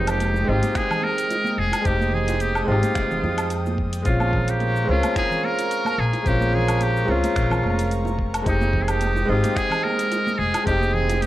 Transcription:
Already playing: upright bass F1, grand piano G#3 C4 D#4 G4, analog synth pad G#3 G5 D#6, muted trumpet D#4
0.07 muted trumpet G4, closed hi-hat, cabasa, low woodblock
0.20 closed hi-hat, high conga, cabasa
0.34 high bongo, cabasa
0.44 grand piano G#3 C4
0.48 upright bass G#1, grand piano D#4 G4, muted trumpet F4
0.62 closed hi-hat, high conga, cabasa
0.75 muted trumpet G#4, finger snap, kick, closed hi-hat, high bongo, cabasa
0.90 low conga, cabasa, low woodblock
1.01 muted trumpet A#4, high conga
1.18 closed hi-hat, cabasa
1.30 closed hi-hat, high bongo, cabasa
1.44 high conga, cabasa
1.58 upright bass F1, muted trumpet G#4
1.72 closed hi-hat, high bongo, cabasa, low woodblock
1.81 upright bass F1, grand piano G#3 C4, closed hi-hat
1.86 grand piano D#4 G4, muted trumpet G4, kick, cabasa
2.00 high conga, cabasa
2.12 muted trumpet G#4, low conga
2.28 closed hi-hat, high bongo, cabasa
2.40 muted trumpet G4, closed hi-hat, high conga, cabasa
2.55 cabasa, low woodblock
2.63 grand piano G#3, muted trumpet G4
2.67 upright bass G#1, grand piano C4 D#4, muted trumpet F4, high bongo
2.72 grand piano G4
2.83 closed hi-hat, high conga, cabasa
2.95 upright bass F1, finger snap, kick, closed hi-hat, cabasa
3.11 low conga, cabasa
3.23 upright bass F2, high bongo, high conga
3.38 closed hi-hat, cabasa, low woodblock
3.50 closed hi-hat, cabasa
3.66 high bongo, high conga, cabasa
3.78 kick
3.93 closed hi-hat, cabasa
4.02 upright bass A#1, grand piano G#3 C4, muted trumpet F4, analog synth pad A#4 A#5 C#6, kick, closed hi-hat, cabasa
4.07 grand piano C#4 F4
4.20 high bongo, high conga, cabasa, low woodblock
4.33 kick, low conga
4.48 muted trumpet G4, closed hi-hat, cabasa
4.60 closed hi-hat, high bongo, high conga, cabasa
4.76 cabasa
4.85 grand piano G#3 C4
4.89 upright bass C#2, grand piano C#4 F4, muted trumpet F4
5.03 closed hi-hat, high conga, cabasa, low woodblock
5.16 muted trumpet G#4, finger snap, kick, closed hi-hat, high bongo, cabasa
5.30 low conga, cabasa
5.43 muted trumpet A#4, high conga
5.58 closed hi-hat, high bongo, cabasa
5.71 closed hi-hat, cabasa
5.85 high conga, cabasa, low woodblock
5.98 upright bass A#1, muted trumpet G#4
6.13 closed hi-hat, high bongo, cabasa
6.22 upright bass A#1, grand piano G#3 C4, kick, closed hi-hat
6.27 grand piano C#4 F4, muted trumpet G4, cabasa
6.41 high conga, cabasa
6.53 muted trumpet G#4, high bongo, low conga
6.68 closed hi-hat, cabasa, low woodblock
6.80 muted trumpet G4, closed hi-hat, high conga, cabasa
6.97 cabasa
7.05 upright bass C#2, grand piano G#3 C4, high bongo
7.09 grand piano C#4 F4, muted trumpet F4
7.23 closed hi-hat, high conga, cabasa
7.36 upright bass A#1, finger snap, kick, closed hi-hat, cabasa
7.50 high bongo, low conga, cabasa, low woodblock
7.63 upright bass F1, high conga
7.79 closed hi-hat, cabasa
7.91 closed hi-hat, cabasa
8.05 high bongo, high conga, cabasa
8.18 kick
8.34 closed hi-hat, cabasa, low woodblock
8.42 grand piano G#3 C4, analog synth pad G#3 G5 D#6, kick
8.46 upright bass F1, grand piano D#4 G4, muted trumpet D#4, closed hi-hat, cabasa
8.60 high bongo, high conga, cabasa
8.74 kick, low conga
8.83 muted trumpet G#4
8.88 muted trumpet G4, closed hi-hat, cabasa, low woodblock
9.01 closed hi-hat, high conga, cabasa
9.17 high bongo, cabasa
9.25 upright bass G#1, grand piano G#3 C4
9.30 grand piano D#4 G4, muted trumpet F4
9.44 closed hi-hat, high conga, cabasa
9.56 muted trumpet G#4, finger snap, kick, closed hi-hat, high bongo, cabasa
9.70 low conga, cabasa, low woodblock
9.83 muted trumpet A#4, high conga
9.99 closed hi-hat, cabasa
10.12 closed hi-hat, high bongo, cabasa
10.27 high conga, cabasa
10.38 upright bass F1, muted trumpet G#4
10.54 closed hi-hat, high bongo, cabasa, low woodblock
10.64 upright bass F1, grand piano G#3 C4, muted trumpet G4, kick, closed hi-hat
10.68 grand piano D#4 G4, cabasa
10.81 high conga, cabasa
10.94 muted trumpet G#4, low conga
11.09 closed hi-hat, high bongo, cabasa
11.22 muted trumpet G4, closed hi-hat, high conga, cabasa

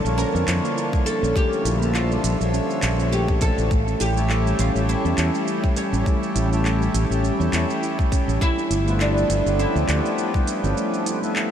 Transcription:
Already playing: analog synth pad D3 F3 A5, oud A4
0.03 fretless electric bass A#1, harmonium D3 F3 A#3, handpan A4, shaker
0.07 harmonium C#5
0.18 handpan C#4, oud A#4, shaker
0.34 fretless electric bass F2, handpan D4, shaker
0.47 fretless electric bass F2, handpan E4, clap, closed hi-hat, shaker
0.64 handpan A#3, shaker
0.77 handpan E4, shaker
0.93 handpan G3, kick, shaker
1.06 handpan D4, oud A4, closed hi-hat, shaker
1.22 fretless electric bass A#1, handpan C#4, shaker
1.35 handpan A3, oud G4, analog synth pad E5, kick, shaker
1.52 handpan D4, shaker
1.65 fretless electric bass A#1, handpan E4, closed hi-hat, shaker
1.81 harmonium D3 F3 A4, handpan A#3, shaker
1.94 handpan E4, oud F4, clap, shaker
2.11 handpan G3, shaker
2.24 fretless electric bass A#1, handpan D4, closed hi-hat, shaker
2.40 fretless electric bass A#1, harmonium D3 F3 C#5, handpan A4, shaker
2.53 handpan C#4, shaker
2.70 handpan D4, shaker
2.82 fretless electric bass A#1, handpan A4, clap, closed hi-hat, shaker
2.99 handpan C#4, shaker
3.12 handpan A3, oud G4, shaker
3.28 handpan A3, kick, shaker
3.41 handpan A3, oud A4, kick, closed hi-hat, shaker
3.58 fretless electric bass A1, handpan A4, shaker
3.71 analog synth pad E3 G3 A3 C#4 G4, handpan A3, kick, shaker
3.87 handpan C#4, shaker
4.00 fretless electric bass A1, handpan E4, oud G4, closed hi-hat, shaker
4.16 handpan A3, harmonium C#4 E4 G4 A4, shaker
4.29 handpan E4, clap, shaker
4.46 handpan G3, shaker
4.59 fretless electric bass A1, handpan C#4, oud F4, closed hi-hat, shaker
4.74 fretless electric bass A1, harmonium C#4 E4 G4 A4, handpan A4, shaker
4.89 handpan C#4, oud E4, shaker
5.05 fretless electric bass E2, handpan C#4, shaker
5.18 fretless electric bass E2, handpan E4, clap, closed hi-hat, shaker
5.34 handpan A3, shaker
5.47 handpan E4, shaker
5.64 handpan G3, kick, shaker
5.76 handpan C#4, oud C#4, closed hi-hat, shaker
5.93 fretless electric bass A1, handpan C#4, shaker
6.06 handpan A3, kick, shaker
6.23 shaker
6.35 fretless electric bass A1, handpan E4, closed hi-hat, shaker
6.51 handpan A3, harmonium C#4 E4 G4 A4, shaker
6.64 handpan E4, clap, shaker
6.81 handpan G3, shaker
6.94 fretless electric bass A1, handpan C#4, closed hi-hat, shaker
7.09 fretless electric bass A1, harmonium C#4 E4 G4, handpan A4, shaker
7.13 harmonium A4
7.23 handpan C#4, shaker
7.39 fretless electric bass E2, handpan C#4, shaker
7.53 fretless electric bass E2, handpan E4, clap, closed hi-hat, shaker
7.69 handpan A3, shaker
7.83 handpan E4, shaker
7.99 handpan G3, kick, shaker
8.12 handpan C#4, kick, closed hi-hat, shaker
8.28 fretless electric bass A1, handpan C#4, shaker
8.41 analog synth pad F3 A3 B3 E4, handpan A3, oud E4, kick, shaker
8.58 handpan D4, shaker
8.70 fretless electric bass G1, handpan E4, closed hi-hat, shaker
8.86 harmonium F3 A3 B3 E4, handpan A3, shaker
9.00 oud D4, handpan E4, clap, shaker
9.17 handpan G3, shaker
9.30 fretless electric bass G1, closed hi-hat, shaker
9.44 fretless electric bass G1, harmonium F3 A3 B3, handpan A4, shaker
9.48 harmonium G4
9.59 handpan C#4, oud E4, shaker
9.75 fretless electric bass D2, handpan D4, shaker
9.88 fretless electric bass D2, handpan E4, clap, closed hi-hat, shaker
10.05 handpan A3, shaker
10.18 handpan E4, shaker
10.34 handpan G3, kick, shaker
10.47 handpan D4, closed hi-hat, shaker
10.64 fretless electric bass G1, handpan C#4, shaker
10.77 handpan A3, shaker
10.93 handpan D4, shaker
11.06 handpan E4, closed hi-hat, shaker
11.21 harmonium F3 A3 B3 E4, handpan A3, shaker
11.36 handpan E4, clap, shaker

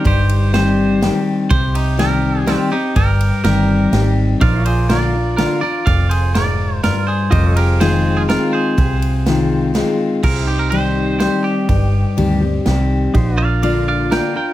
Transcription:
Already playing: pedal steel guitar D#4 G4 C5
0.04 fingered electric bass G1, steel-string acoustic guitar G2, clean electric guitar G4 C5, kick, ride
0.29 ride
0.53 steel-string acoustic guitar D#3 G3 C4 G4, clean electric guitar G4 C5, snare, ride
1.01 steel-string acoustic guitar D#3 G3 C4 G4, snare, ride
1.50 fingered electric bass C2, steel-string acoustic guitar C3, clean electric guitar G4 C5, kick, ride
1.75 clean electric guitar D#4 G4, ride
1.98 steel-string acoustic guitar D#3 G3 C4 G4, clean electric guitar G4 A#4, snare, ride
2.46 steel-string acoustic guitar D#3 G3 C4 G4, clean electric guitar C4 F4, snare, ride
2.71 steel-string acoustic guitar C4 G4, clean electric guitar D#4 G4
2.96 fingered electric bass G1, steel-string acoustic guitar G2, clean electric guitar G4 A#4, kick, ride
3.20 ride
3.44 fingered electric bass G1, steel-string acoustic guitar D#3 G3 C4 G4, clean electric guitar G4 A#4, snare, ride
3.92 fingered electric bass G#1, steel-string acoustic guitar D#3 G3 C4 G4, snare, ride
4.41 fingered electric bass A#1, steel-string acoustic guitar A#2, pedal steel guitar D#4 A#4 C5, clean electric guitar D5 F5, kick, ride
4.65 pedal steel guitar F4 D5, clean electric guitar G#4 C5, ride
4.89 steel-string acoustic guitar D3 A#3 D4 F4, clean electric guitar A#4 D5, snare, ride
5.14 steel-string acoustic guitar D4 F4
5.37 steel-string acoustic guitar D3 A#3 D4 F4, clean electric guitar F4 A#4, snare, ride
5.61 steel-string acoustic guitar D4 F4, clean electric guitar A#4 D5
5.86 fingered electric bass F1, steel-string acoustic guitar F2, clean electric guitar D5 F5, kick, ride
6.09 clean electric guitar G#4 C5, ride
6.35 steel-string acoustic guitar G#2, clean electric guitar A#4 D5, snare, ride
6.83 steel-string acoustic guitar G2, clean electric guitar F4 A#4, snare, ride
7.07 clean electric guitar G#4 C5
7.30 fingered electric bass F1, steel-string acoustic guitar F2, pedal steel guitar F4 A#4 D5, clean electric guitar C5 D#5, kick, ride
7.56 clean electric guitar G4 A#4, pedal steel guitar G#4 C5, ride
7.80 steel-string acoustic guitar D#3 G#3 C4 F4, clean electric guitar G#4 C5, snare, ride
8.17 clean electric guitar F4 G#4
8.28 steel-string acoustic guitar D#3 G#3 C4 F4, clean electric guitar F4 A#4, snare, ride
8.53 clean electric guitar G#4 C5
8.77 fingered electric bass C2, steel-string acoustic guitar C3, kick, ride
9.02 ride
9.26 steel-string acoustic guitar D#3 G#3 C4 F4, snare, ride
9.74 steel-string acoustic guitar D#3 G#3 C4 F4, snare, ride
10.23 fingered electric bass C2, pedal steel guitar F4 G#4 C5, clean electric guitar A#4, kick, crash
10.45 pedal steel guitar G4, clean electric guitar G4
10.49 pedal steel guitar D#4
10.59 clean electric guitar A#4
10.70 steel-string acoustic guitar D#3 G3 C4 G4, clean electric guitar C5, ride
11.20 steel-string acoustic guitar D#3 G3 C4 G4, clean electric guitar C5, snare, ride
11.44 clean electric guitar G4
11.69 fingered electric bass G1, steel-string acoustic guitar G2, kick, ride
12.17 fingered electric bass D2, steel-string acoustic guitar D#3 G3 C4 G4, ride
12.41 steel-string acoustic guitar C4 G4
12.66 fingered electric bass C2, steel-string acoustic guitar D#3 G3 C4 G4, snare, ride
13.14 fingered electric bass A#1, steel-string acoustic guitar A#2, pedal steel guitar D#4 G4 C5, kick, ride
13.34 pedal steel guitar D4, clean electric guitar D5
13.38 pedal steel guitar F4 A#4, clean electric guitar F5
13.62 steel-string acoustic guitar D3 A#3 D4 F4, clean electric guitar D5 F5, ride
13.88 clean electric guitar D5 F5
14.11 steel-string acoustic guitar D3 A#3 D4 F4, clean electric guitar A#4 G5, snare, ride
14.35 steel-string acoustic guitar D4 F4, clean electric guitar A#4 G5

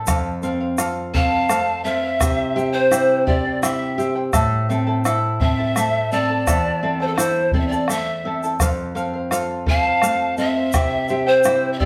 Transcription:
0.07 nylon-string guitar F2, charango A4 C5 F5, bombo rim, bombo low, shaker
0.43 nylon-string guitar C4, charango A4 C5 F5, bombo rim, shaker
0.60 charango C5 F5
0.78 nylon-string guitar F4, charango A4 C5 F5, bombo rim, shaker
1.14 nylon-string guitar C4, charango A4 C5 F5, pan flute F5 A5, bombo rim, bombo low
1.32 charango C5 F5
1.49 nylon-string guitar A3, charango A4 C5 F5, bombo rim, shaker
1.84 nylon-string guitar C4, charango A4 C5 F5, pan flute E5, shaker
2.02 charango C5 F5
2.20 nylon-string guitar C3, charango E4 G4 C5 E5 G5, bombo rim, bombo low, shaker
2.55 charango E4 C5 E5 G5, nylon-string guitar G4, bombo rim, shaker
2.72 charango E4 C5 G5, pan flute C5
2.91 nylon-string guitar E4, charango E4 G4 C5 E5 G5, bombo rim, shaker
3.26 charango E4 C5 E5 G5, nylon-string guitar G4, pan flute D5, bombo rim, bombo low
3.45 charango E4 C5 G5
3.62 charango E4 G4 C5 E5 G5, nylon-string guitar E4, pan flute E5, bombo rim, shaker
3.98 charango E4 C5 E5 G5, nylon-string guitar G4, shaker
4.15 charango E4 C5 G5
4.33 nylon-string guitar A2, charango E4 A4 C5 E5 A5, bombo rim, bombo low, shaker
4.69 nylon-string guitar C4, charango E4 A4 E5 A5, bombo rim, shaker
4.87 charango E4 A4 A5
5.05 nylon-string guitar E4, charango E4 A4 C5 E5 A5, bombo rim, shaker
5.40 nylon-string guitar C4, charango E4 A4 E5 A5, pan flute E5, bombo rim, bombo low
5.58 charango E4 A4 A5
5.76 nylon-string guitar A3, charango E4 A4 C5 E5 A5, bombo rim, shaker
6.12 nylon-string guitar C4, charango E4 A4 E5 A5, pan flute D5 A5, shaker
6.30 charango E4 A4 A5
6.47 nylon-string guitar E2, charango E4 A4 C5 E5 A5, bombo rim, bombo low, shaker
6.65 bombo rim
6.82 nylon-string guitar C4, charango E4 A4 E5 A5
7.00 charango E4 A4 A5, pan flute C5, bombo rim
7.06 pan flute A4
7.14 nylon-string guitar E4, pan flute C5, charango C5 E5, bombo rim
7.18 charango E4 A4 A5, shaker
7.35 bombo rim
7.52 nylon-string guitar C4, charango E4 A4 E5 A5, pan flute D5, bombo low
7.59 pan flute E5
7.67 pan flute D5
7.71 charango E4 A4 A5, shaker
7.88 nylon-string guitar A3, charango E4 A4 C5 E5 A5, pan flute E5, bombo rim, shaker
8.06 bombo rim
8.25 nylon-string guitar C4, charango E4 A4 E5 A5
8.43 charango E4 A4 A5, shaker
8.60 nylon-string guitar F2, charango A4 C5 F5, bombo rim, bombo low, shaker
8.95 nylon-string guitar C4, charango A4 C5 F5, bombo rim, shaker
9.14 charango C5 F5
9.31 nylon-string guitar F4, charango A4 C5 F5, bombo rim, shaker
9.66 nylon-string guitar C4, charango A4 C5 F5, pan flute F5 A5, bombo rim, bombo low
9.85 charango C5 F5
10.02 nylon-string guitar A3, charango A4 C5 F5, bombo rim, shaker
10.37 nylon-string guitar C4, charango A4 C5 F5, pan flute E5, shaker
10.55 charango C5 F5
10.73 nylon-string guitar C3, charango E4 G4 C5 E5 G5, bombo rim, bombo low, shaker
11.08 charango E4 C5 E5 G5, nylon-string guitar G4, bombo rim, shaker
11.26 charango E4 C5 G5, pan flute C5
11.44 nylon-string guitar E4, charango E4 G4 C5 E5 G5, bombo rim, shaker
11.72 pan flute E5
11.79 charango E4 C5 E5 G5, nylon-string guitar G4, pan flute D5, bombo rim, bombo low

